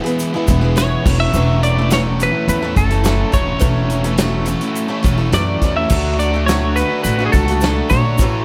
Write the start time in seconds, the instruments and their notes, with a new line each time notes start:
Already playing: overdriven electric guitar E2, clean electric guitar B4
0.02 overdriven electric guitar E3 G#3 B3 E4, steel-string acoustic guitar G#4, closed hi-hat
0.19 closed hi-hat, shaker
0.33 overdriven electric guitar E3 G#3 B3 E4, steel-string acoustic guitar G#4
0.46 upright bass E1, overdriven electric guitar E3 G#3 B3 E4, kick, closed hi-hat, shaker
0.50 steel-string acoustic guitar G#4
0.60 overdriven electric guitar E3 G#3 B3 E4, steel-string acoustic guitar G#4
0.75 overdriven electric guitar E2 B2 E3 G#3 B3 E4, steel-string acoustic guitar G#4, clean electric guitar C#5, snare, closed hi-hat, shaker
1.03 upright bass E1, overdriven electric guitar E3 A3 C#4 E4, steel-string acoustic guitar F#3, kick, crash, shaker
1.08 steel-string acoustic guitar A4, snare
1.18 overdriven electric guitar A3 C#4 E4, clean electric guitar E5
1.32 upright bass E1, overdriven electric guitar E3 A3 C#4 E4, steel-string acoustic guitar F#3, shaker
1.36 steel-string acoustic guitar A4
1.61 overdriven electric guitar E3 A3 C#4 E4, clean electric guitar D5, closed hi-hat
1.75 overdriven electric guitar A3 C#4 E4, steel-string acoustic guitar A4
1.89 overdriven electric guitar E3 A3 C#4 E4, steel-string acoustic guitar F#3 A4, snare, closed hi-hat, shaker
1.94 clean electric guitar C#5
2.04 overdriven electric guitar A3 C#4 E4
2.20 steel-string acoustic guitar F#3 A3 C#4 A4, clean electric guitar B4, closed hi-hat, shaker
2.33 overdriven electric guitar A3 C#4 E4
2.48 upright bass E2, clean electric guitar B4, closed hi-hat, shaker
2.62 overdriven electric guitar A3 C#4 E4, steel-string acoustic guitar A4
2.76 upright bass F#1, overdriven electric guitar E3 A3 C#4 E4, steel-string acoustic guitar F#3 A4, clean electric guitar A4, kick, closed hi-hat, shaker
2.89 overdriven electric guitar A3 C#4 E4, steel-string acoustic guitar A4, closed hi-hat
3.03 overdriven electric guitar E3 A3 C#4 E4, steel-string acoustic guitar F#3 A4, snare, closed hi-hat, shaker
3.31 upright bass E1, overdriven electric guitar E3 A3 C#4 E4, steel-string acoustic guitar F#3 A4, clean electric guitar C#5, kick, closed hi-hat, shaker
3.45 overdriven electric guitar A3 C#4 E4
3.59 upright bass E1, overdriven electric guitar E3 A3 C#4 E4, steel-string acoustic guitar F#3 A4, kick, closed hi-hat, shaker
3.89 overdriven electric guitar E3 A3 C#4 E4, closed hi-hat, shaker
4.03 overdriven electric guitar A3 C#4 E4, steel-string acoustic guitar A4, closed hi-hat
4.16 overdriven electric guitar E3 A3 C#4 E4, steel-string acoustic guitar F#3 A4, snare, closed hi-hat, shaker
4.32 overdriven electric guitar A3 C#4 E4
4.45 steel-string acoustic guitar F#3 A3 C#4 A4, closed hi-hat, shaker
4.60 overdriven electric guitar A3 C#4 E4, closed hi-hat
4.75 closed hi-hat, shaker
4.88 overdriven electric guitar A3 C#4 E4, steel-string acoustic guitar A4
5.03 upright bass E1, overdriven electric guitar E3 A3 C#4, steel-string acoustic guitar F#3 A4, kick, closed hi-hat, shaker
5.08 overdriven electric guitar E4
5.18 overdriven electric guitar A3 C#4 E4, steel-string acoustic guitar A4
5.32 upright bass F#2, overdriven electric guitar E3 A3 C#4 E4, steel-string acoustic guitar F#3 A4, clean electric guitar D5, snare, closed hi-hat, shaker
5.61 upright bass E2, overdriven electric guitar E3 A3 C#4 E4, steel-string acoustic guitar F#3 A4, kick, snare, closed hi-hat, shaker
5.76 overdriven electric guitar A3 C#4 E4, clean electric guitar E5
5.89 upright bass D2, overdriven electric guitar D3 A3 D4 F#4, steel-string acoustic guitar F#3 A4, kick, crash, shaker
6.17 overdriven electric guitar D3 A3 D4 F#4, clean electric guitar D5, closed hi-hat, shaker
6.32 overdriven electric guitar A3 D4 F#4, steel-string acoustic guitar A4
6.45 overdriven electric guitar D3 A3 D4 F#4, clean electric guitar C#5, closed hi-hat, shaker
6.49 steel-string acoustic guitar F#3 A4, snare
6.61 overdriven electric guitar A3 D4 F#4
6.76 steel-string acoustic guitar F#3 A3, clean electric guitar B4, closed hi-hat, shaker
6.80 steel-string acoustic guitar F#4 A4
6.89 overdriven electric guitar A3 D4 F#4
7.03 upright bass A1, clean electric guitar B4, closed hi-hat, shaker
7.18 overdriven electric guitar A3 D4 F#4, steel-string acoustic guitar A4
7.26 clean electric guitar G#4
7.32 upright bass C#2, overdriven electric guitar D3 A3 D4 F#4, steel-string acoustic guitar F#3, clean electric guitar A4, kick, closed hi-hat, shaker
7.36 steel-string acoustic guitar A4
7.46 overdriven electric guitar A3 D4 F#4, steel-string acoustic guitar A4, closed hi-hat
7.50 steel-string acoustic guitar F#4
7.61 overdriven electric guitar D3 A3 D4 F#4, steel-string acoustic guitar F#3 A4, snare, closed hi-hat, shaker
7.89 upright bass A#1, overdriven electric guitar D3 A3 D4 F#4, steel-string acoustic guitar F#3, clean electric guitar C#5, kick, closed hi-hat, shaker
7.94 steel-string acoustic guitar A4
8.04 overdriven electric guitar A3 D4 F#4
8.18 upright bass A1, overdriven electric guitar A2 E3 A3 C#4 E4, steel-string acoustic guitar F#3, kick, closed hi-hat, shaker
8.22 steel-string acoustic guitar A4